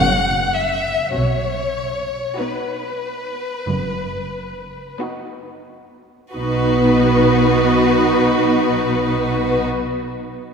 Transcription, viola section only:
0.00 0.86 A#3 soft
0.00 0.85 C#4 soft
2.39 3.37 B3 soft
2.39 3.38 D#4 soft
4.99 6.05 B3 soft
4.99 6.05 D#4 soft
6.34 9.67 B3 soft
6.34 9.66 D#4 medium

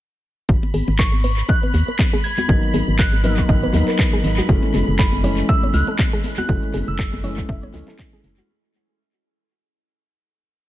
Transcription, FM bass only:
0.49 0.58 G#1 loud
0.74 0.83 G#1 medium
0.88 1.42 G#1 medium
1.74 1.83 D#2 medium
2.49 2.58 G#1 loud
2.74 2.83 G#1 medium
2.88 3.42 G#1 medium
3.49 3.66 G#1 loud
3.74 3.83 D#2 medium
4.24 4.41 G#1 medium
4.49 4.58 F#1 loud
4.74 4.83 F#1 medium
4.88 5.42 F#1 medium
5.74 5.83 C#2 medium
6.49 6.58 F#1 loud
6.74 6.83 F#1 medium
6.88 7.42 F#1 medium
7.49 7.66 F#1 medium
7.74 7.83 C#2 medium
8.24 8.41 F#1 medium

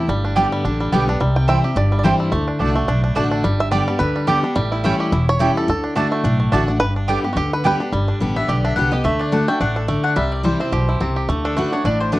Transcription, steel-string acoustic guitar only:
0.09 0.62 G2 medium
0.36 0.63 D3 loud
0.36 0.63 G3 medium
0.36 0.64 B3 medium
0.36 0.64 G4 loud
0.65 0.91 D3 medium
0.92 1.07 D3 loud
0.92 1.08 G3 loud
0.92 1.08 B3 loud
0.92 1.06 G4 loud
1.08 1.20 B3 medium
1.08 1.20 G4 medium
1.20 1.74 C3 medium
1.48 1.63 E3 medium
1.48 1.63 G3 loud
1.48 1.64 C4 medium
1.48 1.62 E4 loud
1.63 1.76 C4 soft
1.63 1.76 E4 medium
1.76 2.30 G2 loud
2.04 2.31 E3 medium
2.04 2.31 G3 loud
2.04 2.32 C4 loud
2.04 2.32 E4 loud
2.32 2.59 D3 medium
2.60 2.75 D3 medium
2.60 2.75 A3 medium
2.60 2.76 D4 loud
2.60 2.74 F#4 loud
2.75 2.88 D4 soft
2.75 2.88 F#4 medium
2.89 3.42 A2 medium
3.16 3.43 D3 medium
3.16 3.43 A3 medium
3.16 3.43 D4 loud
3.16 3.43 F#4 loud
3.44 3.98 G2 medium
3.72 3.87 D3 medium
3.72 3.87 G3 medium
3.72 3.88 B3 loud
3.72 3.87 G4 medium
3.88 4.01 B3 soft
3.88 4.00 G4 medium
4.00 4.26 D3 medium
4.27 4.43 D3 loud
4.27 4.43 G3 medium
4.27 4.43 B3 loud
4.27 4.42 G4 loud
4.43 4.56 B3 medium
4.43 4.55 G4 medium
4.55 5.09 A2 loud
4.84 5.11 E3 medium
4.84 5.11 G3 loud
4.84 5.11 C#4 loud
4.84 5.12 E4 loud
5.12 5.66 E2 loud
5.39 5.66 E3 medium
5.39 5.67 G3 loud
5.39 5.67 C#4 loud
5.39 5.68 E4 medium
5.68 5.94 D3 loud
5.95 6.23 D3 medium
5.95 6.23 A3 medium
5.95 6.23 D4 medium
5.95 6.24 F#4 loud
6.25 6.78 A2 loud
6.52 6.67 D3 medium
6.52 6.68 A3 medium
6.52 6.68 D4 loud
6.52 6.67 F#4 loud
6.68 6.81 D4 medium
6.68 6.80 F#4 medium
6.81 7.34 G2 medium
7.08 7.23 D3 medium
7.08 7.23 G3 medium
7.08 7.24 B3 medium
7.08 7.22 G4 loud
7.24 7.37 B3 soft
7.24 7.36 G4 medium
7.36 7.63 D3 loud
7.64 7.79 D3 medium
7.64 7.80 G3 loud
7.64 7.80 B3 loud
7.64 7.79 G4 loud
7.80 7.93 B3 medium
7.80 7.92 G4 medium
7.93 8.46 G2 medium
8.20 8.35 D3 medium
8.20 8.36 G3 medium
8.20 8.36 B3 loud
8.20 8.35 G4 medium
8.36 8.48 G4 medium
8.49 8.76 D3 medium
8.77 8.92 D3 medium
8.77 8.92 G3 medium
8.77 8.92 B3 loud
8.77 8.91 G4 loud
8.92 9.05 B3 medium
8.92 9.04 G4 medium
9.05 9.31 D3 medium
9.32 9.47 D3 medium
9.32 9.47 A3 medium
9.32 9.48 D4 medium
9.32 9.47 F#4 medium
9.48 9.61 D4 soft
9.48 9.60 F#4 medium
9.61 9.88 A2 medium
9.88 10.15 D3 loud
10.16 10.70 C3 medium
10.43 10.59 E3 medium
10.43 10.59 G3 medium
10.43 10.60 C4 medium
10.43 10.58 E4 medium
10.60 10.73 C4 soft
10.60 10.72 E4 medium
10.72 10.99 B2 loud
11.00 11.27 C3 loud
11.29 11.55 D3 medium
11.57 11.72 D3 medium
11.57 11.72 A3 medium
11.57 11.72 D4 medium
11.57 11.71 F#4 loud
11.72 11.85 D4 soft
11.72 11.84 F#4 medium
11.85 12.19 A2 medium
12.12 12.19 D3 medium
12.12 12.19 A3 loud
12.12 12.19 D4 loud
12.12 12.19 F#4 medium

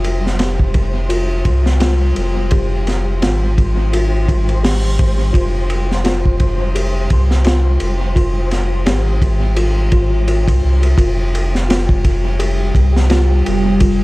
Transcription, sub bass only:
0.00 1.43 F1 loud
1.46 2.13 C2 medium
2.17 3.25 F1 medium
3.23 5.32 G#1 medium
5.35 7.08 F1 loud
7.11 7.78 C2 medium
7.81 8.89 F1 loud
8.87 10.47 G#1 medium
10.48 10.61 C2 medium
10.64 10.95 C2 loud
10.98 12.72 F1 loud
12.75 13.43 C2 medium
13.48 14.04 F1 medium

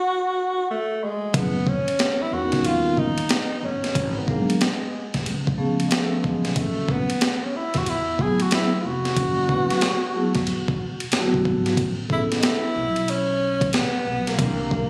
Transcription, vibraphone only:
1.34 1.60 F#3 medium
1.34 1.60 A3 medium
1.34 1.60 B3 medium
1.34 1.60 E4 medium
1.34 1.60 G#4 medium
2.31 2.57 G3 medium
2.31 2.57 B3 medium
2.31 2.58 C#4 medium
2.31 2.58 D#4 medium
2.31 2.58 A#4 medium
2.64 3.05 G3 medium
2.64 3.06 B3 soft
2.64 3.06 C#4 medium
2.64 3.06 D#4 medium
2.64 3.06 A#4 medium
4.27 4.53 F#3 medium
4.27 4.53 G#3 medium
4.27 4.53 B3 medium
4.27 4.54 D4 medium
4.27 4.54 G#4 medium
5.57 6.51 F3 medium
5.57 6.51 A3 medium
5.57 6.51 B3 medium
5.57 6.52 C#4 medium
5.57 6.52 G#4 medium
8.18 8.68 F#3 medium
8.18 8.68 A3 medium
8.18 8.69 B3 medium
8.18 8.69 E4 medium
8.18 8.69 G#4 medium
9.49 9.75 F#3 medium
9.49 9.75 A3 medium
9.49 9.75 B3 medium
9.49 9.75 E4 medium
9.49 9.75 B4 medium
10.14 10.40 F#3 medium
10.14 10.40 A3 medium
10.14 10.40 B3 medium
10.14 10.41 E4 medium
10.14 10.41 G#4 medium
11.12 11.77 F#3 medium
11.12 11.78 A3 medium
11.12 11.78 B3 medium
11.12 11.78 E4 medium
11.12 11.79 F#4 medium
12.09 12.51 B3 medium
12.09 12.51 C#4 medium
12.09 12.51 E4 medium
12.09 12.51 G#4 medium
12.09 12.52 A4 medium
14.38 14.64 G3 medium
14.38 14.64 C4 medium
14.38 14.64 D4 medium
14.38 14.64 E4 medium
14.38 14.65 A#4 medium

